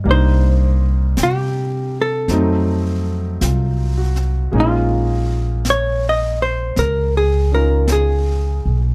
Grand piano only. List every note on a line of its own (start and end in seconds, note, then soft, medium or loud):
0.04 2.29 G3 soft
0.04 2.30 A#3 soft
0.04 2.31 D4 soft
0.09 2.30 D#4 soft
2.30 4.54 F#3 soft
2.30 4.54 A3 soft
2.30 4.54 C4 soft
2.30 4.54 D#4 medium
3.41 4.32 F4 soft
3.98 4.78 F#4 soft
4.52 8.95 G#3 soft
4.52 8.95 A#3 soft
4.52 7.50 C#4 soft
4.52 7.52 D#4 soft
7.52 8.95 C#4 soft
7.52 8.95 D#4 soft
7.52 8.95 F4 soft